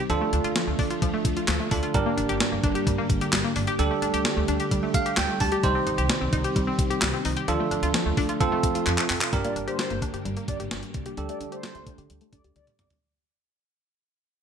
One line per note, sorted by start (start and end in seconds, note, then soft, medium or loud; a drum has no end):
0.10 0.18 D2 loud
0.10 5.60 D3 medium
0.10 0.18 F3 medium
0.10 1.93 F3 medium
0.10 1.93 A3 medium
0.10 1.68 D4 medium
0.10 1.68 F4 medium
0.10 1.93 F4 medium
0.10 1.68 A4 medium
0.10 closed hi-hat medium
0.21 0.29 A3 medium
0.33 0.41 D2 loud
0.33 0.41 D4 medium
0.33 closed hi-hat medium
0.44 0.53 D2 loud
0.44 0.53 F4 loud
0.44 closed hi-hat medium
0.56 0.64 F3 medium
0.56 snare loud
0.56 closed hi-hat medium
0.67 0.76 D2 loud
0.67 0.76 A3 medium
0.79 0.87 D2 loud
0.79 0.87 D4 medium
0.79 kick loud
0.79 open hi-hat medium
0.90 0.99 F4 medium
0.90 closed hi-hat medium
1.02 1.11 D2 loud
1.02 1.10 F3 medium
1.02 kick medium
1.02 closed hi-hat medium
1.14 1.22 A3 medium
1.25 1.33 D2 loud
1.25 kick loud
1.25 closed hi-hat medium
1.37 1.45 F4 medium
1.37 closed hi-hat medium
1.48 1.57 D2 loud
1.48 1.56 F3 medium
1.48 snare loud
1.48 clap loud
1.48 closed hi-hat medium
1.60 1.68 A3 medium
1.71 1.80 D2 loud
1.71 1.80 D4 medium
1.71 1.93 D4 medium
1.71 1.94 F4 medium
1.71 1.94 A4 medium
1.71 kick loud
1.71 open hi-hat medium
1.83 1.91 F4 medium
1.83 closed hi-hat medium
1.94 2.03 G1 loud
1.94 3.77 G3 medium
1.94 2.03 G3 medium
1.94 3.77 A#3 medium
1.94 3.75 D4 medium
1.94 7.44 G4 medium
1.94 3.75 G4 medium
1.94 3.75 A#4 medium
1.94 kick loud
1.94 closed hi-hat medium
2.06 2.14 A#3 medium
2.17 2.26 G1 loud
2.17 2.26 D4 medium
2.17 closed hi-hat medium
2.29 2.38 G1 loud
2.29 2.37 G4 loud
2.29 closed hi-hat medium
2.40 2.49 G3 medium
2.40 snare loud
2.40 closed hi-hat medium
2.52 2.61 G1 loud
2.52 2.60 A#3 medium
2.63 2.72 G1 loud
2.63 2.72 D4 medium
2.63 kick loud
2.63 closed hi-hat medium
2.75 2.83 G4 medium
2.75 closed hi-hat medium
2.87 2.95 G1 loud
2.87 2.95 G3 medium
2.87 kick medium
2.87 closed hi-hat medium
2.98 3.06 A#3 medium
3.10 3.18 G1 medium
3.10 kick loud
3.10 closed hi-hat medium
3.21 3.30 G4 medium
3.21 closed hi-hat medium
3.33 3.41 G1 loud
3.33 3.41 G3 medium
3.33 snare loud
3.33 clap medium
3.33 closed hi-hat medium
3.44 3.53 A#3 medium
3.56 3.65 G1 loud
3.56 3.64 D4 medium
3.56 open hi-hat medium
3.67 3.76 G4 loud
3.67 closed hi-hat medium
3.79 3.88 D2 loud
3.79 7.45 G3 medium
3.79 3.87 G3 medium
3.79 5.62 A3 medium
3.79 5.60 D4 medium
3.79 5.60 G4 medium
3.79 5.60 A4 medium
3.79 closed hi-hat medium
3.91 3.99 A3 medium
4.02 4.11 D2 loud
4.02 4.10 D4 medium
4.02 closed hi-hat medium
4.14 4.22 D2 loud
4.14 4.22 G4 loud
4.14 closed hi-hat medium
4.25 4.33 G3 medium
4.25 snare loud
4.25 closed hi-hat medium
4.37 4.45 D2 loud
4.37 4.45 A3 medium
4.48 4.57 D2 loud
4.48 4.56 D4 loud
4.48 closed hi-hat medium
4.60 4.68 G4 medium
4.60 closed hi-hat medium
4.71 4.80 D2 loud
4.71 4.79 G3 medium
4.71 kick medium
4.71 closed hi-hat medium
4.83 4.91 A3 medium
4.94 5.03 D2 loud
4.94 5.16 F5 medium
4.94 kick loud
4.94 closed hi-hat medium
5.06 5.14 G4 medium
5.06 closed hi-hat medium
5.17 5.26 D2 loud
5.17 5.26 G3 medium
5.17 5.39 G5 medium
5.17 snare loud
5.17 clap loud
5.17 closed hi-hat medium
5.29 5.37 A3 medium
5.40 5.49 D2 loud
5.40 5.49 D4 medium
5.40 5.62 A5 medium
5.40 kick loud
5.40 open hi-hat medium
5.52 5.60 G4 loud
5.52 closed hi-hat medium
5.63 5.72 C2 loud
5.63 7.46 D#3 medium
5.63 5.72 G3 medium
5.63 7.46 C4 medium
5.63 7.45 D#4 medium
5.63 7.45 G4 medium
5.63 7.45 C5 medium
5.63 kick loud
5.63 closed hi-hat medium
5.75 5.83 C4 medium
5.87 5.95 C2 loud
5.87 5.95 D#4 medium
5.87 closed hi-hat medium
5.98 6.07 C2 loud
5.98 6.06 G4 loud
5.98 closed hi-hat medium
6.09 6.18 G3 medium
6.09 snare loud
6.09 closed hi-hat medium
6.21 6.30 C2 loud
6.21 6.29 C4 medium
6.33 6.41 C2 loud
6.33 6.41 D#4 loud
6.33 kick loud
6.33 closed hi-hat medium
6.44 6.53 G4 medium
6.44 closed hi-hat medium
6.56 6.64 C2 loud
6.56 6.64 G3 medium
6.56 kick medium
6.56 closed hi-hat medium
6.67 6.76 C4 medium
6.79 6.87 C2 loud
6.79 kick loud
6.79 closed hi-hat medium
6.90 6.99 G4 medium
6.90 closed hi-hat medium
7.02 7.10 C2 loud
7.02 7.10 G3 medium
7.02 snare loud
7.02 clap loud
7.02 closed hi-hat medium
7.14 7.22 C4 medium
7.25 7.34 C2 loud
7.25 7.33 D#4 medium
7.25 open hi-hat medium
7.37 7.45 G4 loud
7.37 closed hi-hat medium
7.48 7.57 D2 loud
7.48 8.40 D3 medium
7.48 7.56 F3 medium
7.48 9.31 F3 medium
7.48 9.31 A3 medium
7.48 8.39 D4 medium
7.48 8.39 F4 medium
7.48 8.39 A4 medium
7.48 closed hi-hat medium
7.60 7.68 A3 medium
7.71 7.80 D2 loud
7.71 7.79 D4 medium
7.71 closed hi-hat medium
7.83 7.91 D2 loud
7.83 7.91 F4 loud
7.83 closed hi-hat medium
7.94 8.03 F3 medium
7.94 snare loud
7.94 closed hi-hat medium
8.06 8.14 D2 medium
8.06 8.14 A3 medium
8.17 8.26 D2 loud
8.17 8.26 D4 loud
8.17 kick medium
8.17 open hi-hat medium
8.29 8.37 F4 medium
8.29 closed hi-hat medium
8.40 8.49 F2 loud
8.40 9.32 C3 medium
8.40 8.49 F3 medium
8.40 9.31 C4 medium
8.40 9.32 F4 medium
8.40 9.31 F4 medium
8.40 9.31 A4 medium
8.40 kick medium
8.40 closed hi-hat medium
8.52 8.60 A3 medium
8.63 8.72 F2 medium
8.63 kick loud
8.63 closed hi-hat medium
8.75 8.83 F4 medium
8.75 closed hi-hat medium
8.87 8.95 F2 loud
8.87 8.95 F3 medium
8.87 clap medium
8.87 closed hi-hat medium
8.98 9.06 A3 medium
8.98 clap medium
9.10 9.18 F2 loud
9.10 9.18 C4 medium
9.10 clap loud
9.10 open hi-hat medium
9.21 9.30 F4 loud
9.21 clap loud
9.21 closed hi-hat medium
9.33 9.41 G1 loud
9.33 12.98 D3 medium
9.33 9.41 G3 medium
9.33 12.98 G3 medium
9.33 11.16 A#3 medium
9.33 11.14 D4 medium
9.33 11.14 G4 medium
9.33 12.99 G4 medium
9.33 11.14 A#4 medium
9.33 kick loud
9.33 closed hi-hat medium
9.44 9.53 A#3 medium
9.44 9.54 D5 medium
9.44 closed hi-hat medium
9.56 9.65 G1 medium
9.56 9.64 D4 medium
9.56 closed hi-hat medium
9.68 9.76 G4 loud
9.68 10.00 C5 medium
9.68 closed hi-hat medium
9.79 9.87 G3 medium
9.79 snare loud
9.79 closed hi-hat medium
9.90 9.99 G1 medium
9.90 9.99 A#3 medium
9.90 closed hi-hat soft
10.02 10.10 D4 medium
10.02 kick medium
10.02 closed hi-hat medium
10.14 10.22 G2 medium
10.14 10.22 G4 medium
10.14 closed hi-hat soft
10.25 10.34 G1 loud
10.25 10.33 G3 medium
10.25 closed hi-hat medium
10.37 10.45 A#3 medium
10.37 closed hi-hat soft
10.48 10.57 G1 medium
10.48 10.56 D4 medium
10.48 10.58 D5 medium
10.48 kick medium
10.48 closed hi-hat medium
10.60 10.68 G1 loud
10.60 10.68 G4 medium
10.60 closed hi-hat medium
10.71 10.80 G1 loud
10.71 10.80 G3 medium
10.71 snare loud
10.71 closed hi-hat medium
10.83 closed hi-hat soft
10.94 11.03 C2 medium
10.94 kick loud
10.94 closed hi-hat medium
11.06 11.14 G4 medium
11.06 closed hi-hat medium
11.17 11.26 D2 loud
11.17 11.26 G3 medium
11.17 13.00 A3 medium
11.17 12.98 D4 medium
11.17 12.99 G4 medium
11.17 12.99 A4 medium
11.17 closed hi-hat medium
11.29 11.37 A3 medium
11.29 11.39 D5 medium
11.29 closed hi-hat medium
11.40 11.49 D2 medium
11.40 11.49 D4 medium
11.40 closed hi-hat medium
11.52 11.60 G4 medium
11.52 11.85 C5 medium
11.52 closed hi-hat medium
11.63 11.72 G3 medium
11.63 snare loud
11.63 closed hi-hat medium
11.75 11.84 D2 medium
11.75 11.83 A3 medium
11.75 closed hi-hat soft
11.87 11.95 D4 medium
11.87 kick medium
11.87 closed hi-hat medium
11.98 12.07 D3 medium
11.98 12.06 G4 medium
11.98 closed hi-hat medium
12.10 12.18 D2 medium
12.10 12.18 G3 medium
12.10 closed hi-hat medium
12.21 12.30 A3 medium
12.21 closed hi-hat soft
12.33 12.41 D2 medium
12.33 12.41 D4 medium
12.33 12.42 D5 medium
12.33 kick medium
12.33 closed hi-hat medium
12.44 12.53 D2 medium
12.44 12.53 G4 medium
12.44 closed hi-hat medium
12.56 12.64 D2 loud
12.56 12.64 G3 medium
12.56 12.65 D5 medium
12.56 closed hi-hat medium
12.56 high tom medium
12.67 closed hi-hat soft
12.67 mid tom medium
12.79 12.88 C2 medium
12.79 12.89 D5 medium
12.79 closed hi-hat medium
12.79 mid tom medium
12.90 12.99 G4 medium
12.90 closed hi-hat soft
12.90 floor tom medium